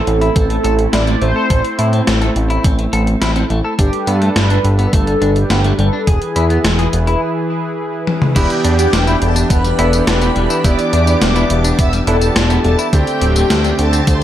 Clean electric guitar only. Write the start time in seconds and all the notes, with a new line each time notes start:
0.21 E4
0.36 C4
0.50 A3
0.64 A4
0.93 E4
1.07 C4
1.22 A3
1.36 A4
1.50 A4
1.79 E4
1.93 C4
2.07 A3
2.21 A4
2.50 E4
2.64 C4
2.79 A3
2.93 A4
3.22 E4
3.36 C4
3.50 A3
3.65 A4
3.79 D4
4.07 B3
4.22 A3
4.36 G3
4.50 D4
4.79 B3
4.93 A3
5.07 G3
5.22 D4
5.50 B3
5.64 A3
5.79 G3
5.93 D4
6.07 G#4
6.36 E4
6.50 B3
6.65 G#3
6.79 G#4
7.07 E4
8.36 E4
8.64 D4
8.79 B3
8.93 G3
9.07 E4
9.36 D4
9.50 B3
9.64 G3
9.79 E4
10.07 D4
10.22 B3
10.36 G3
10.50 E4
10.65 E4
10.93 D4
11.07 B3
11.22 G3
11.36 E4
11.64 D4
11.79 B3
11.93 G3
12.07 E4
12.36 D4
12.50 B3
12.64 G3
12.79 E4
12.93 D4
13.22 C4
13.36 A3
13.50 G3
13.64 D4
13.93 C4
14.07 A3